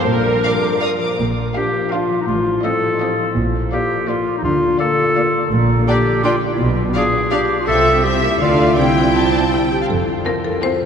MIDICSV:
0, 0, Header, 1, 10, 480
1, 0, Start_track
1, 0, Key_signature, -2, "major"
1, 0, Tempo, 370828
1, 87, Time_signature, 3, 2, 24, 8
1, 2486, Tempo, 359281
1, 7288, Key_signature, -1, "major"
1, 10166, Tempo, 369914
1, 14300, End_track
2, 0, Start_track
2, 0, Title_t, "Violin section"
2, 0, Program_c, 0, 48
2, 583, Note_on_c, 0, 86, 38
2, 1029, Note_off_c, 0, 86, 0
2, 1064, Note_on_c, 0, 87, 46
2, 1160, Note_off_c, 0, 87, 0
2, 1302, Note_on_c, 0, 86, 34
2, 1538, Note_off_c, 0, 86, 0
2, 2018, Note_on_c, 0, 77, 40
2, 2367, Note_off_c, 0, 77, 0
2, 2497, Note_on_c, 0, 77, 44
2, 2850, Note_off_c, 0, 77, 0
2, 3465, Note_on_c, 0, 77, 46
2, 3818, Note_off_c, 0, 77, 0
2, 3935, Note_on_c, 0, 77, 45
2, 4294, Note_off_c, 0, 77, 0
2, 4895, Note_on_c, 0, 77, 43
2, 5252, Note_off_c, 0, 77, 0
2, 5394, Note_on_c, 0, 77, 45
2, 5746, Note_off_c, 0, 77, 0
2, 6341, Note_on_c, 0, 77, 48
2, 6694, Note_off_c, 0, 77, 0
2, 6833, Note_on_c, 0, 77, 52
2, 7176, Note_off_c, 0, 77, 0
2, 7773, Note_on_c, 0, 79, 44
2, 7880, Note_off_c, 0, 79, 0
2, 8254, Note_on_c, 0, 79, 50
2, 8361, Note_off_c, 0, 79, 0
2, 9199, Note_on_c, 0, 77, 44
2, 9306, Note_off_c, 0, 77, 0
2, 9680, Note_on_c, 0, 77, 51
2, 9787, Note_off_c, 0, 77, 0
2, 10168, Note_on_c, 0, 76, 54
2, 10607, Note_off_c, 0, 76, 0
2, 10628, Note_on_c, 0, 76, 48
2, 11102, Note_off_c, 0, 76, 0
2, 11106, Note_on_c, 0, 77, 48
2, 11597, Note_off_c, 0, 77, 0
2, 11599, Note_on_c, 0, 79, 40
2, 12033, Note_off_c, 0, 79, 0
2, 12081, Note_on_c, 0, 81, 52
2, 12536, Note_off_c, 0, 81, 0
2, 12563, Note_on_c, 0, 79, 45
2, 12933, Note_off_c, 0, 79, 0
2, 12954, Note_on_c, 0, 77, 45
2, 12999, Note_off_c, 0, 77, 0
2, 13541, Note_on_c, 0, 81, 49
2, 13893, Note_off_c, 0, 81, 0
2, 14016, Note_on_c, 0, 81, 46
2, 14300, Note_off_c, 0, 81, 0
2, 14300, End_track
3, 0, Start_track
3, 0, Title_t, "Violin section"
3, 0, Program_c, 1, 48
3, 565, Note_on_c, 1, 77, 36
3, 571, Note_on_c, 1, 74, 32
3, 669, Note_off_c, 1, 77, 0
3, 675, Note_off_c, 1, 74, 0
3, 1045, Note_on_c, 1, 74, 36
3, 1045, Note_on_c, 1, 77, 32
3, 1148, Note_off_c, 1, 77, 0
3, 1149, Note_off_c, 1, 74, 0
3, 2010, Note_on_c, 1, 77, 50
3, 2363, Note_off_c, 1, 77, 0
3, 2491, Note_on_c, 1, 77, 47
3, 2846, Note_off_c, 1, 77, 0
3, 3451, Note_on_c, 1, 75, 52
3, 3811, Note_off_c, 1, 75, 0
3, 3939, Note_on_c, 1, 75, 47
3, 4296, Note_off_c, 1, 75, 0
3, 4906, Note_on_c, 1, 74, 52
3, 5258, Note_off_c, 1, 74, 0
3, 5386, Note_on_c, 1, 74, 52
3, 5741, Note_off_c, 1, 74, 0
3, 6338, Note_on_c, 1, 74, 52
3, 6693, Note_off_c, 1, 74, 0
3, 6817, Note_on_c, 1, 74, 52
3, 7168, Note_off_c, 1, 74, 0
3, 7778, Note_on_c, 1, 74, 54
3, 7884, Note_off_c, 1, 74, 0
3, 8255, Note_on_c, 1, 74, 49
3, 8362, Note_off_c, 1, 74, 0
3, 9207, Note_on_c, 1, 74, 52
3, 9314, Note_off_c, 1, 74, 0
3, 9685, Note_on_c, 1, 74, 49
3, 9792, Note_off_c, 1, 74, 0
3, 10167, Note_on_c, 1, 76, 47
3, 10606, Note_off_c, 1, 76, 0
3, 10643, Note_on_c, 1, 76, 55
3, 11110, Note_off_c, 1, 76, 0
3, 11116, Note_on_c, 1, 74, 49
3, 11593, Note_off_c, 1, 74, 0
3, 11602, Note_on_c, 1, 79, 48
3, 12818, Note_off_c, 1, 79, 0
3, 13534, Note_on_c, 1, 65, 55
3, 13889, Note_off_c, 1, 65, 0
3, 14013, Note_on_c, 1, 65, 50
3, 14300, Note_off_c, 1, 65, 0
3, 14300, End_track
4, 0, Start_track
4, 0, Title_t, "Marimba"
4, 0, Program_c, 2, 12
4, 12594, Note_on_c, 2, 64, 62
4, 12811, Note_off_c, 2, 64, 0
4, 12826, Note_on_c, 2, 67, 60
4, 13046, Note_off_c, 2, 67, 0
4, 13061, Note_on_c, 2, 69, 57
4, 13502, Note_off_c, 2, 69, 0
4, 13529, Note_on_c, 2, 70, 72
4, 13753, Note_off_c, 2, 70, 0
4, 13768, Note_on_c, 2, 69, 62
4, 13991, Note_off_c, 2, 69, 0
4, 14009, Note_on_c, 2, 72, 83
4, 14300, Note_off_c, 2, 72, 0
4, 14300, End_track
5, 0, Start_track
5, 0, Title_t, "Clarinet"
5, 0, Program_c, 3, 71
5, 2008, Note_on_c, 3, 67, 69
5, 2488, Note_on_c, 3, 65, 56
5, 2508, Note_off_c, 3, 67, 0
5, 2847, Note_off_c, 3, 65, 0
5, 2875, Note_on_c, 3, 63, 47
5, 2923, Note_off_c, 3, 63, 0
5, 2955, Note_on_c, 3, 65, 64
5, 3433, Note_off_c, 3, 65, 0
5, 3441, Note_on_c, 3, 69, 68
5, 4393, Note_off_c, 3, 69, 0
5, 4896, Note_on_c, 3, 67, 71
5, 5378, Note_on_c, 3, 65, 61
5, 5398, Note_off_c, 3, 67, 0
5, 5740, Note_off_c, 3, 65, 0
5, 5765, Note_on_c, 3, 63, 54
5, 5844, Note_off_c, 3, 63, 0
5, 5852, Note_on_c, 3, 65, 71
5, 6321, Note_off_c, 3, 65, 0
5, 6329, Note_on_c, 3, 69, 80
5, 7264, Note_off_c, 3, 69, 0
5, 7772, Note_on_c, 3, 67, 75
5, 8215, Note_off_c, 3, 67, 0
5, 8257, Note_on_c, 3, 65, 79
5, 8415, Note_off_c, 3, 65, 0
5, 8634, Note_on_c, 3, 64, 51
5, 8736, Note_off_c, 3, 64, 0
5, 9214, Note_on_c, 3, 68, 81
5, 9693, Note_on_c, 3, 67, 75
5, 9713, Note_off_c, 3, 68, 0
5, 10049, Note_off_c, 3, 67, 0
5, 10072, Note_on_c, 3, 65, 60
5, 10159, Note_off_c, 3, 65, 0
5, 10167, Note_on_c, 3, 69, 90
5, 10640, Note_on_c, 3, 67, 69
5, 10660, Note_off_c, 3, 69, 0
5, 11118, Note_off_c, 3, 67, 0
5, 11129, Note_on_c, 3, 65, 78
5, 11599, Note_off_c, 3, 65, 0
5, 11609, Note_on_c, 3, 64, 64
5, 12797, Note_off_c, 3, 64, 0
5, 14300, End_track
6, 0, Start_track
6, 0, Title_t, "Harp"
6, 0, Program_c, 4, 46
6, 0, Note_on_c, 4, 53, 46
6, 0, Note_on_c, 4, 65, 33
6, 90, Note_on_c, 4, 46, 36
6, 313, Note_off_c, 4, 53, 0
6, 329, Note_on_c, 4, 53, 30
6, 559, Note_off_c, 4, 65, 0
6, 574, Note_on_c, 4, 65, 33
6, 822, Note_on_c, 4, 74, 34
6, 1043, Note_off_c, 4, 65, 0
6, 1059, Note_on_c, 4, 65, 29
6, 1289, Note_off_c, 4, 53, 0
6, 1305, Note_on_c, 4, 53, 30
6, 1530, Note_off_c, 4, 46, 0
6, 1545, Note_on_c, 4, 46, 41
6, 1765, Note_off_c, 4, 53, 0
6, 1781, Note_on_c, 4, 53, 34
6, 2006, Note_off_c, 4, 65, 0
6, 2021, Note_on_c, 4, 65, 38
6, 2254, Note_on_c, 4, 67, 36
6, 2468, Note_off_c, 4, 65, 0
6, 2483, Note_on_c, 4, 65, 42
6, 2655, Note_off_c, 4, 67, 0
6, 2709, Note_off_c, 4, 53, 0
6, 2725, Note_on_c, 4, 53, 34
6, 2969, Note_on_c, 4, 45, 49
6, 2988, Note_off_c, 4, 46, 0
6, 2989, Note_off_c, 4, 74, 0
6, 3199, Note_off_c, 4, 53, 0
6, 3215, Note_on_c, 4, 53, 42
6, 3441, Note_off_c, 4, 65, 0
6, 3457, Note_on_c, 4, 65, 38
6, 3693, Note_on_c, 4, 67, 38
6, 3921, Note_off_c, 4, 65, 0
6, 3937, Note_on_c, 4, 65, 36
6, 4103, Note_off_c, 4, 67, 0
6, 4162, Note_off_c, 4, 53, 0
6, 4178, Note_on_c, 4, 53, 37
6, 4420, Note_on_c, 4, 46, 42
6, 4438, Note_off_c, 4, 45, 0
6, 4667, Note_on_c, 4, 58, 39
6, 4886, Note_off_c, 4, 65, 0
6, 4902, Note_on_c, 4, 65, 39
6, 5143, Note_on_c, 4, 67, 32
6, 5365, Note_off_c, 4, 65, 0
6, 5381, Note_on_c, 4, 65, 40
6, 5549, Note_off_c, 4, 67, 0
6, 5610, Note_off_c, 4, 58, 0
6, 5626, Note_on_c, 4, 58, 39
6, 5868, Note_on_c, 4, 50, 50
6, 5880, Note_off_c, 4, 46, 0
6, 6090, Note_off_c, 4, 58, 0
6, 6106, Note_on_c, 4, 58, 46
6, 6328, Note_off_c, 4, 65, 0
6, 6344, Note_on_c, 4, 65, 43
6, 6582, Note_on_c, 4, 67, 38
6, 6797, Note_off_c, 4, 65, 0
6, 6813, Note_on_c, 4, 65, 44
6, 6983, Note_off_c, 4, 67, 0
6, 7033, Note_off_c, 4, 58, 0
6, 7049, Note_on_c, 4, 58, 43
6, 7287, Note_on_c, 4, 46, 54
6, 7306, Note_off_c, 4, 65, 0
6, 7307, Note_off_c, 4, 53, 0
6, 7310, Note_off_c, 4, 50, 0
6, 7527, Note_on_c, 4, 62, 45
6, 7767, Note_on_c, 4, 67, 43
6, 8002, Note_on_c, 4, 69, 37
6, 8223, Note_off_c, 4, 67, 0
6, 8239, Note_on_c, 4, 67, 45
6, 8411, Note_off_c, 4, 69, 0
6, 8462, Note_off_c, 4, 62, 0
6, 8478, Note_on_c, 4, 62, 39
6, 8712, Note_on_c, 4, 47, 59
6, 8738, Note_off_c, 4, 67, 0
6, 8740, Note_off_c, 4, 58, 0
6, 8741, Note_off_c, 4, 46, 0
6, 8939, Note_off_c, 4, 62, 0
6, 8955, Note_on_c, 4, 62, 48
6, 9189, Note_on_c, 4, 65, 42
6, 9437, Note_on_c, 4, 67, 37
6, 9662, Note_off_c, 4, 65, 0
6, 9678, Note_on_c, 4, 65, 46
6, 9849, Note_off_c, 4, 67, 0
6, 9908, Note_off_c, 4, 62, 0
6, 9924, Note_on_c, 4, 62, 40
6, 10168, Note_on_c, 4, 48, 52
6, 10178, Note_off_c, 4, 47, 0
6, 10181, Note_off_c, 4, 65, 0
6, 10184, Note_off_c, 4, 62, 0
6, 10400, Note_on_c, 4, 60, 43
6, 10641, Note_on_c, 4, 64, 43
6, 10878, Note_on_c, 4, 65, 35
6, 11116, Note_on_c, 4, 50, 55
6, 11136, Note_off_c, 4, 60, 0
6, 11138, Note_off_c, 4, 48, 0
6, 11138, Note_off_c, 4, 64, 0
6, 11286, Note_off_c, 4, 65, 0
6, 11358, Note_on_c, 4, 65, 36
6, 11371, Note_on_c, 4, 77, 40
6, 11602, Note_on_c, 4, 48, 49
6, 11622, Note_off_c, 4, 50, 0
6, 11625, Note_off_c, 4, 65, 0
6, 11626, Note_off_c, 4, 77, 0
6, 11850, Note_on_c, 4, 60, 35
6, 12093, Note_on_c, 4, 67, 35
6, 12342, Note_on_c, 4, 69, 35
6, 12559, Note_off_c, 4, 67, 0
6, 12574, Note_on_c, 4, 67, 42
6, 12749, Note_off_c, 4, 69, 0
6, 12803, Note_off_c, 4, 60, 0
6, 12819, Note_on_c, 4, 60, 36
6, 13056, Note_on_c, 4, 41, 47
6, 13077, Note_off_c, 4, 48, 0
6, 13077, Note_off_c, 4, 67, 0
6, 13299, Note_on_c, 4, 65, 42
6, 13531, Note_on_c, 4, 67, 34
6, 13751, Note_off_c, 4, 65, 0
6, 13767, Note_on_c, 4, 65, 43
6, 13938, Note_off_c, 4, 67, 0
6, 13990, Note_off_c, 4, 60, 0
6, 14005, Note_on_c, 4, 60, 43
6, 14249, Note_on_c, 4, 48, 37
6, 14300, Note_off_c, 4, 41, 0
6, 14300, Note_off_c, 4, 48, 0
6, 14300, Note_off_c, 4, 60, 0
6, 14300, Note_off_c, 4, 65, 0
6, 14300, End_track
7, 0, Start_track
7, 0, Title_t, "Viola section"
7, 0, Program_c, 5, 48
7, 84, Note_on_c, 5, 70, 60
7, 1057, Note_off_c, 5, 70, 0
7, 2019, Note_on_c, 5, 62, 42
7, 2367, Note_off_c, 5, 62, 0
7, 2490, Note_on_c, 5, 62, 54
7, 2846, Note_off_c, 5, 62, 0
7, 3456, Note_on_c, 5, 60, 47
7, 3814, Note_off_c, 5, 60, 0
7, 3944, Note_on_c, 5, 60, 49
7, 4299, Note_off_c, 5, 60, 0
7, 4894, Note_on_c, 5, 58, 49
7, 5251, Note_off_c, 5, 58, 0
7, 5374, Note_on_c, 5, 58, 55
7, 5735, Note_off_c, 5, 58, 0
7, 6343, Note_on_c, 5, 58, 50
7, 6695, Note_off_c, 5, 58, 0
7, 6814, Note_on_c, 5, 58, 52
7, 7166, Note_off_c, 5, 58, 0
7, 7763, Note_on_c, 5, 62, 52
7, 7870, Note_off_c, 5, 62, 0
7, 8245, Note_on_c, 5, 62, 54
7, 8352, Note_off_c, 5, 62, 0
7, 9203, Note_on_c, 5, 62, 52
7, 9310, Note_off_c, 5, 62, 0
7, 9688, Note_on_c, 5, 62, 54
7, 9795, Note_off_c, 5, 62, 0
7, 10168, Note_on_c, 5, 60, 51
7, 10607, Note_off_c, 5, 60, 0
7, 10648, Note_on_c, 5, 60, 53
7, 10741, Note_off_c, 5, 60, 0
7, 10884, Note_on_c, 5, 58, 55
7, 10978, Note_off_c, 5, 58, 0
7, 11118, Note_on_c, 5, 57, 53
7, 11594, Note_off_c, 5, 57, 0
7, 11602, Note_on_c, 5, 60, 46
7, 12818, Note_off_c, 5, 60, 0
7, 13543, Note_on_c, 5, 60, 51
7, 13894, Note_off_c, 5, 60, 0
7, 14018, Note_on_c, 5, 60, 59
7, 14300, Note_off_c, 5, 60, 0
7, 14300, End_track
8, 0, Start_track
8, 0, Title_t, "French horn section"
8, 0, Program_c, 6, 60
8, 104, Note_on_c, 6, 53, 41
8, 105, Note_on_c, 6, 62, 41
8, 1286, Note_off_c, 6, 53, 0
8, 1310, Note_off_c, 6, 62, 0
8, 14300, End_track
9, 0, Start_track
9, 0, Title_t, "Cello section"
9, 0, Program_c, 7, 48
9, 86, Note_on_c, 7, 46, 45
9, 493, Note_off_c, 7, 46, 0
9, 1542, Note_on_c, 7, 46, 62
9, 1916, Note_off_c, 7, 46, 0
9, 2974, Note_on_c, 7, 45, 56
9, 3354, Note_off_c, 7, 45, 0
9, 4427, Note_on_c, 7, 46, 69
9, 4804, Note_off_c, 7, 46, 0
9, 5863, Note_on_c, 7, 50, 64
9, 6240, Note_off_c, 7, 50, 0
9, 7298, Note_on_c, 7, 46, 69
9, 7692, Note_off_c, 7, 46, 0
9, 8725, Note_on_c, 7, 47, 66
9, 9120, Note_off_c, 7, 47, 0
9, 10168, Note_on_c, 7, 48, 62
9, 11067, Note_off_c, 7, 48, 0
9, 11117, Note_on_c, 7, 50, 53
9, 11602, Note_on_c, 7, 48, 53
9, 11603, Note_off_c, 7, 50, 0
9, 12818, Note_off_c, 7, 48, 0
9, 13060, Note_on_c, 7, 41, 62
9, 13436, Note_off_c, 7, 41, 0
9, 14300, End_track
10, 0, Start_track
10, 0, Title_t, "Double bass section"
10, 0, Program_c, 8, 48
10, 81, Note_on_c, 8, 34, 45
10, 470, Note_off_c, 8, 34, 0
10, 1536, Note_on_c, 8, 34, 58
10, 1913, Note_off_c, 8, 34, 0
10, 2963, Note_on_c, 8, 33, 60
10, 3348, Note_off_c, 8, 33, 0
10, 4422, Note_on_c, 8, 34, 62
10, 4801, Note_off_c, 8, 34, 0
10, 5860, Note_on_c, 8, 38, 58
10, 6238, Note_off_c, 8, 38, 0
10, 7285, Note_on_c, 8, 34, 59
10, 7685, Note_off_c, 8, 34, 0
10, 8726, Note_on_c, 8, 35, 59
10, 9121, Note_off_c, 8, 35, 0
10, 10165, Note_on_c, 8, 36, 59
10, 11065, Note_off_c, 8, 36, 0
10, 11122, Note_on_c, 8, 38, 58
10, 11601, Note_on_c, 8, 36, 49
10, 11606, Note_off_c, 8, 38, 0
10, 12817, Note_off_c, 8, 36, 0
10, 13055, Note_on_c, 8, 29, 58
10, 13433, Note_off_c, 8, 29, 0
10, 14300, End_track
0, 0, End_of_file